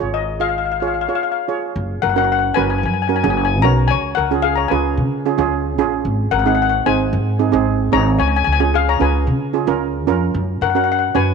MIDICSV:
0, 0, Header, 1, 4, 480
1, 0, Start_track
1, 0, Key_signature, 6, "major"
1, 0, Tempo, 537153
1, 1573, Time_signature, 4, 2, 24, 8
1, 10135, End_track
2, 0, Start_track
2, 0, Title_t, "Steel pan"
2, 0, Program_c, 0, 114
2, 124, Note_on_c, 0, 75, 84
2, 365, Note_on_c, 0, 77, 90
2, 374, Note_off_c, 0, 75, 0
2, 424, Note_off_c, 0, 77, 0
2, 435, Note_on_c, 0, 77, 64
2, 499, Note_off_c, 0, 77, 0
2, 518, Note_on_c, 0, 77, 63
2, 572, Note_off_c, 0, 77, 0
2, 585, Note_on_c, 0, 77, 57
2, 629, Note_off_c, 0, 77, 0
2, 640, Note_on_c, 0, 77, 65
2, 702, Note_off_c, 0, 77, 0
2, 717, Note_on_c, 0, 77, 56
2, 770, Note_off_c, 0, 77, 0
2, 781, Note_on_c, 0, 77, 62
2, 831, Note_off_c, 0, 77, 0
2, 841, Note_on_c, 0, 77, 55
2, 894, Note_off_c, 0, 77, 0
2, 905, Note_on_c, 0, 77, 64
2, 960, Note_off_c, 0, 77, 0
2, 971, Note_on_c, 0, 77, 60
2, 1019, Note_off_c, 0, 77, 0
2, 1030, Note_on_c, 0, 77, 72
2, 1090, Note_off_c, 0, 77, 0
2, 1101, Note_on_c, 0, 77, 65
2, 1166, Note_off_c, 0, 77, 0
2, 1177, Note_on_c, 0, 77, 64
2, 1237, Note_off_c, 0, 77, 0
2, 1805, Note_on_c, 0, 78, 84
2, 1815, Note_on_c, 0, 70, 69
2, 1861, Note_off_c, 0, 78, 0
2, 1871, Note_on_c, 0, 78, 67
2, 1878, Note_off_c, 0, 70, 0
2, 1935, Note_off_c, 0, 78, 0
2, 1946, Note_on_c, 0, 78, 79
2, 1990, Note_off_c, 0, 78, 0
2, 2001, Note_on_c, 0, 78, 67
2, 2063, Note_off_c, 0, 78, 0
2, 2074, Note_on_c, 0, 78, 78
2, 2124, Note_off_c, 0, 78, 0
2, 2135, Note_on_c, 0, 78, 67
2, 2210, Note_off_c, 0, 78, 0
2, 2273, Note_on_c, 0, 80, 95
2, 2285, Note_on_c, 0, 71, 79
2, 2332, Note_off_c, 0, 80, 0
2, 2343, Note_on_c, 0, 80, 65
2, 2353, Note_off_c, 0, 71, 0
2, 2401, Note_off_c, 0, 80, 0
2, 2412, Note_on_c, 0, 80, 69
2, 2477, Note_off_c, 0, 80, 0
2, 2487, Note_on_c, 0, 80, 55
2, 2541, Note_off_c, 0, 80, 0
2, 2552, Note_on_c, 0, 80, 70
2, 2613, Note_off_c, 0, 80, 0
2, 2624, Note_on_c, 0, 80, 54
2, 2689, Note_off_c, 0, 80, 0
2, 2700, Note_on_c, 0, 80, 67
2, 2739, Note_off_c, 0, 80, 0
2, 2750, Note_on_c, 0, 80, 55
2, 2812, Note_off_c, 0, 80, 0
2, 2823, Note_on_c, 0, 80, 73
2, 2880, Note_off_c, 0, 80, 0
2, 2891, Note_on_c, 0, 80, 63
2, 2939, Note_off_c, 0, 80, 0
2, 2950, Note_on_c, 0, 80, 67
2, 3005, Note_off_c, 0, 80, 0
2, 3016, Note_on_c, 0, 80, 62
2, 3071, Note_off_c, 0, 80, 0
2, 3081, Note_on_c, 0, 80, 80
2, 3158, Note_off_c, 0, 80, 0
2, 3237, Note_on_c, 0, 82, 101
2, 3253, Note_on_c, 0, 73, 81
2, 3464, Note_on_c, 0, 80, 103
2, 3477, Note_off_c, 0, 73, 0
2, 3490, Note_on_c, 0, 73, 81
2, 3493, Note_off_c, 0, 82, 0
2, 3579, Note_off_c, 0, 80, 0
2, 3599, Note_off_c, 0, 73, 0
2, 3708, Note_on_c, 0, 78, 93
2, 3728, Note_on_c, 0, 70, 76
2, 3821, Note_off_c, 0, 78, 0
2, 3837, Note_off_c, 0, 70, 0
2, 3954, Note_on_c, 0, 77, 105
2, 3969, Note_on_c, 0, 68, 74
2, 4070, Note_on_c, 0, 82, 86
2, 4078, Note_off_c, 0, 77, 0
2, 4086, Note_off_c, 0, 68, 0
2, 4086, Note_on_c, 0, 73, 68
2, 4184, Note_on_c, 0, 80, 84
2, 4200, Note_off_c, 0, 73, 0
2, 4202, Note_on_c, 0, 71, 69
2, 4204, Note_off_c, 0, 82, 0
2, 5123, Note_off_c, 0, 80, 0
2, 5132, Note_off_c, 0, 71, 0
2, 5641, Note_on_c, 0, 78, 95
2, 5648, Note_on_c, 0, 70, 73
2, 5702, Note_off_c, 0, 78, 0
2, 5712, Note_on_c, 0, 78, 70
2, 5714, Note_off_c, 0, 70, 0
2, 5772, Note_off_c, 0, 78, 0
2, 5782, Note_on_c, 0, 78, 84
2, 5840, Note_off_c, 0, 78, 0
2, 5851, Note_on_c, 0, 78, 77
2, 5906, Note_off_c, 0, 78, 0
2, 5916, Note_on_c, 0, 78, 83
2, 5971, Note_off_c, 0, 78, 0
2, 5982, Note_on_c, 0, 78, 72
2, 6046, Note_off_c, 0, 78, 0
2, 6132, Note_on_c, 0, 80, 104
2, 6133, Note_on_c, 0, 72, 70
2, 7056, Note_off_c, 0, 72, 0
2, 7085, Note_on_c, 0, 73, 87
2, 7086, Note_on_c, 0, 82, 107
2, 7120, Note_off_c, 0, 80, 0
2, 7305, Note_off_c, 0, 73, 0
2, 7311, Note_off_c, 0, 82, 0
2, 7316, Note_on_c, 0, 73, 81
2, 7324, Note_on_c, 0, 80, 94
2, 7386, Note_off_c, 0, 73, 0
2, 7386, Note_off_c, 0, 80, 0
2, 7397, Note_on_c, 0, 80, 70
2, 7464, Note_off_c, 0, 80, 0
2, 7475, Note_on_c, 0, 80, 90
2, 7535, Note_off_c, 0, 80, 0
2, 7546, Note_on_c, 0, 80, 83
2, 7607, Note_off_c, 0, 80, 0
2, 7619, Note_on_c, 0, 80, 92
2, 7676, Note_off_c, 0, 80, 0
2, 7687, Note_on_c, 0, 80, 80
2, 7744, Note_off_c, 0, 80, 0
2, 7812, Note_on_c, 0, 68, 75
2, 7823, Note_on_c, 0, 77, 101
2, 7926, Note_off_c, 0, 68, 0
2, 7940, Note_on_c, 0, 73, 72
2, 7943, Note_off_c, 0, 77, 0
2, 7945, Note_on_c, 0, 82, 92
2, 8046, Note_off_c, 0, 73, 0
2, 8051, Note_on_c, 0, 71, 75
2, 8059, Note_off_c, 0, 82, 0
2, 8061, Note_on_c, 0, 80, 86
2, 8974, Note_off_c, 0, 71, 0
2, 8979, Note_off_c, 0, 80, 0
2, 9490, Note_on_c, 0, 78, 83
2, 9496, Note_on_c, 0, 70, 65
2, 9549, Note_off_c, 0, 78, 0
2, 9556, Note_off_c, 0, 70, 0
2, 9560, Note_on_c, 0, 78, 62
2, 9607, Note_off_c, 0, 78, 0
2, 9618, Note_on_c, 0, 78, 73
2, 9674, Note_off_c, 0, 78, 0
2, 9685, Note_on_c, 0, 78, 68
2, 9744, Note_off_c, 0, 78, 0
2, 9755, Note_on_c, 0, 78, 74
2, 9809, Note_off_c, 0, 78, 0
2, 9820, Note_on_c, 0, 78, 67
2, 9890, Note_off_c, 0, 78, 0
2, 9968, Note_on_c, 0, 80, 90
2, 9976, Note_on_c, 0, 71, 74
2, 10135, Note_off_c, 0, 71, 0
2, 10135, Note_off_c, 0, 80, 0
2, 10135, End_track
3, 0, Start_track
3, 0, Title_t, "Steel pan"
3, 0, Program_c, 1, 114
3, 0, Note_on_c, 1, 65, 62
3, 0, Note_on_c, 1, 68, 56
3, 2, Note_on_c, 1, 73, 69
3, 220, Note_off_c, 1, 65, 0
3, 220, Note_off_c, 1, 68, 0
3, 222, Note_off_c, 1, 73, 0
3, 357, Note_on_c, 1, 65, 63
3, 358, Note_on_c, 1, 68, 56
3, 358, Note_on_c, 1, 75, 69
3, 580, Note_off_c, 1, 65, 0
3, 580, Note_off_c, 1, 68, 0
3, 580, Note_off_c, 1, 75, 0
3, 732, Note_on_c, 1, 65, 71
3, 734, Note_on_c, 1, 68, 64
3, 736, Note_on_c, 1, 73, 70
3, 874, Note_off_c, 1, 65, 0
3, 876, Note_off_c, 1, 68, 0
3, 876, Note_off_c, 1, 73, 0
3, 969, Note_on_c, 1, 68, 53
3, 970, Note_on_c, 1, 65, 64
3, 973, Note_on_c, 1, 73, 69
3, 1187, Note_off_c, 1, 68, 0
3, 1188, Note_off_c, 1, 65, 0
3, 1190, Note_off_c, 1, 73, 0
3, 1324, Note_on_c, 1, 65, 60
3, 1327, Note_on_c, 1, 68, 61
3, 1329, Note_on_c, 1, 73, 72
3, 1568, Note_off_c, 1, 65, 0
3, 1570, Note_off_c, 1, 68, 0
3, 1571, Note_off_c, 1, 73, 0
3, 1928, Note_on_c, 1, 61, 69
3, 1930, Note_on_c, 1, 66, 68
3, 1932, Note_on_c, 1, 70, 86
3, 2148, Note_off_c, 1, 61, 0
3, 2149, Note_off_c, 1, 66, 0
3, 2150, Note_off_c, 1, 70, 0
3, 2294, Note_on_c, 1, 61, 75
3, 2296, Note_on_c, 1, 66, 65
3, 2298, Note_on_c, 1, 70, 83
3, 2583, Note_off_c, 1, 61, 0
3, 2584, Note_off_c, 1, 66, 0
3, 2586, Note_off_c, 1, 70, 0
3, 2760, Note_on_c, 1, 61, 66
3, 2760, Note_on_c, 1, 66, 64
3, 2764, Note_on_c, 1, 70, 74
3, 2841, Note_off_c, 1, 61, 0
3, 2841, Note_off_c, 1, 66, 0
3, 2843, Note_off_c, 1, 70, 0
3, 2892, Note_on_c, 1, 61, 78
3, 2894, Note_on_c, 1, 66, 67
3, 2896, Note_on_c, 1, 68, 79
3, 3110, Note_off_c, 1, 61, 0
3, 3111, Note_off_c, 1, 66, 0
3, 3112, Note_off_c, 1, 68, 0
3, 3252, Note_on_c, 1, 61, 77
3, 3253, Note_on_c, 1, 66, 74
3, 3257, Note_on_c, 1, 70, 88
3, 3493, Note_off_c, 1, 61, 0
3, 3494, Note_off_c, 1, 66, 0
3, 3496, Note_off_c, 1, 70, 0
3, 3851, Note_on_c, 1, 61, 75
3, 3852, Note_on_c, 1, 65, 61
3, 3857, Note_on_c, 1, 68, 84
3, 4070, Note_off_c, 1, 61, 0
3, 4070, Note_off_c, 1, 65, 0
3, 4072, Note_off_c, 1, 68, 0
3, 4208, Note_on_c, 1, 61, 76
3, 4213, Note_on_c, 1, 65, 68
3, 4213, Note_on_c, 1, 68, 90
3, 4500, Note_off_c, 1, 61, 0
3, 4503, Note_off_c, 1, 65, 0
3, 4503, Note_off_c, 1, 68, 0
3, 4695, Note_on_c, 1, 61, 73
3, 4699, Note_on_c, 1, 65, 66
3, 4701, Note_on_c, 1, 68, 80
3, 4768, Note_off_c, 1, 61, 0
3, 4770, Note_off_c, 1, 65, 0
3, 4771, Note_off_c, 1, 68, 0
3, 4806, Note_on_c, 1, 61, 93
3, 4810, Note_on_c, 1, 65, 80
3, 4813, Note_on_c, 1, 68, 99
3, 5026, Note_off_c, 1, 61, 0
3, 5029, Note_off_c, 1, 65, 0
3, 5030, Note_off_c, 1, 68, 0
3, 5168, Note_on_c, 1, 61, 96
3, 5171, Note_on_c, 1, 65, 85
3, 5173, Note_on_c, 1, 68, 111
3, 5410, Note_off_c, 1, 61, 0
3, 5412, Note_off_c, 1, 65, 0
3, 5413, Note_off_c, 1, 68, 0
3, 5767, Note_on_c, 1, 63, 73
3, 5771, Note_on_c, 1, 60, 73
3, 5772, Note_on_c, 1, 68, 78
3, 5986, Note_off_c, 1, 63, 0
3, 5989, Note_off_c, 1, 60, 0
3, 5989, Note_off_c, 1, 68, 0
3, 6132, Note_on_c, 1, 60, 74
3, 6134, Note_on_c, 1, 63, 74
3, 6136, Note_on_c, 1, 68, 78
3, 6421, Note_off_c, 1, 60, 0
3, 6422, Note_off_c, 1, 63, 0
3, 6423, Note_off_c, 1, 68, 0
3, 6608, Note_on_c, 1, 60, 73
3, 6608, Note_on_c, 1, 68, 79
3, 6609, Note_on_c, 1, 63, 67
3, 6684, Note_off_c, 1, 60, 0
3, 6684, Note_off_c, 1, 63, 0
3, 6684, Note_off_c, 1, 68, 0
3, 6720, Note_on_c, 1, 63, 84
3, 6722, Note_on_c, 1, 60, 93
3, 6725, Note_on_c, 1, 68, 98
3, 6943, Note_off_c, 1, 63, 0
3, 6944, Note_off_c, 1, 60, 0
3, 6945, Note_off_c, 1, 68, 0
3, 7077, Note_on_c, 1, 60, 82
3, 7077, Note_on_c, 1, 63, 72
3, 7083, Note_on_c, 1, 68, 87
3, 7324, Note_off_c, 1, 60, 0
3, 7324, Note_off_c, 1, 63, 0
3, 7327, Note_off_c, 1, 68, 0
3, 7685, Note_on_c, 1, 61, 73
3, 7685, Note_on_c, 1, 65, 65
3, 7687, Note_on_c, 1, 68, 88
3, 7904, Note_off_c, 1, 61, 0
3, 7905, Note_off_c, 1, 65, 0
3, 7905, Note_off_c, 1, 68, 0
3, 8039, Note_on_c, 1, 61, 72
3, 8042, Note_on_c, 1, 65, 66
3, 8046, Note_on_c, 1, 68, 87
3, 8334, Note_off_c, 1, 61, 0
3, 8335, Note_off_c, 1, 65, 0
3, 8337, Note_off_c, 1, 68, 0
3, 8519, Note_on_c, 1, 61, 68
3, 8522, Note_on_c, 1, 65, 66
3, 8527, Note_on_c, 1, 68, 78
3, 8598, Note_off_c, 1, 61, 0
3, 8600, Note_off_c, 1, 65, 0
3, 8602, Note_off_c, 1, 68, 0
3, 8641, Note_on_c, 1, 65, 80
3, 8644, Note_on_c, 1, 61, 89
3, 8649, Note_on_c, 1, 70, 98
3, 8862, Note_off_c, 1, 65, 0
3, 8864, Note_off_c, 1, 61, 0
3, 8866, Note_off_c, 1, 70, 0
3, 9000, Note_on_c, 1, 61, 94
3, 9004, Note_on_c, 1, 65, 84
3, 9008, Note_on_c, 1, 70, 102
3, 9244, Note_off_c, 1, 61, 0
3, 9246, Note_off_c, 1, 65, 0
3, 9248, Note_off_c, 1, 70, 0
3, 9604, Note_on_c, 1, 61, 71
3, 9607, Note_on_c, 1, 66, 66
3, 9608, Note_on_c, 1, 70, 82
3, 9823, Note_off_c, 1, 61, 0
3, 9824, Note_off_c, 1, 66, 0
3, 9825, Note_off_c, 1, 70, 0
3, 9960, Note_on_c, 1, 61, 74
3, 9961, Note_on_c, 1, 73, 79
3, 9964, Note_on_c, 1, 66, 72
3, 10135, Note_off_c, 1, 61, 0
3, 10135, Note_off_c, 1, 66, 0
3, 10135, Note_off_c, 1, 73, 0
3, 10135, End_track
4, 0, Start_track
4, 0, Title_t, "Upright bass"
4, 0, Program_c, 2, 32
4, 9, Note_on_c, 2, 32, 73
4, 938, Note_off_c, 2, 32, 0
4, 1570, Note_on_c, 2, 30, 94
4, 1789, Note_off_c, 2, 30, 0
4, 1811, Note_on_c, 2, 30, 92
4, 2257, Note_off_c, 2, 30, 0
4, 2295, Note_on_c, 2, 30, 85
4, 2531, Note_on_c, 2, 42, 95
4, 2545, Note_off_c, 2, 30, 0
4, 2863, Note_off_c, 2, 42, 0
4, 2893, Note_on_c, 2, 30, 112
4, 3250, Note_off_c, 2, 30, 0
4, 3250, Note_on_c, 2, 35, 91
4, 3470, Note_off_c, 2, 35, 0
4, 3493, Note_on_c, 2, 37, 97
4, 3712, Note_off_c, 2, 37, 0
4, 3736, Note_on_c, 2, 37, 94
4, 4179, Note_off_c, 2, 37, 0
4, 4213, Note_on_c, 2, 37, 85
4, 4445, Note_on_c, 2, 49, 96
4, 4459, Note_off_c, 2, 37, 0
4, 4779, Note_off_c, 2, 49, 0
4, 4811, Note_on_c, 2, 37, 102
4, 5165, Note_off_c, 2, 37, 0
4, 5165, Note_on_c, 2, 33, 100
4, 5387, Note_off_c, 2, 33, 0
4, 5405, Note_on_c, 2, 32, 100
4, 5627, Note_off_c, 2, 32, 0
4, 5646, Note_on_c, 2, 32, 90
4, 6093, Note_off_c, 2, 32, 0
4, 6131, Note_on_c, 2, 32, 86
4, 6369, Note_on_c, 2, 44, 98
4, 6382, Note_off_c, 2, 32, 0
4, 6700, Note_off_c, 2, 44, 0
4, 6732, Note_on_c, 2, 32, 104
4, 7057, Note_off_c, 2, 32, 0
4, 7087, Note_on_c, 2, 32, 103
4, 7307, Note_off_c, 2, 32, 0
4, 7328, Note_on_c, 2, 37, 94
4, 7547, Note_off_c, 2, 37, 0
4, 7569, Note_on_c, 2, 37, 97
4, 8014, Note_off_c, 2, 37, 0
4, 8047, Note_on_c, 2, 37, 94
4, 8283, Note_on_c, 2, 49, 96
4, 8296, Note_off_c, 2, 37, 0
4, 8616, Note_off_c, 2, 49, 0
4, 8644, Note_on_c, 2, 37, 101
4, 8999, Note_off_c, 2, 37, 0
4, 8999, Note_on_c, 2, 41, 95
4, 9221, Note_off_c, 2, 41, 0
4, 9244, Note_on_c, 2, 42, 102
4, 9464, Note_off_c, 2, 42, 0
4, 9483, Note_on_c, 2, 42, 90
4, 9930, Note_off_c, 2, 42, 0
4, 9960, Note_on_c, 2, 42, 90
4, 10135, Note_off_c, 2, 42, 0
4, 10135, End_track
0, 0, End_of_file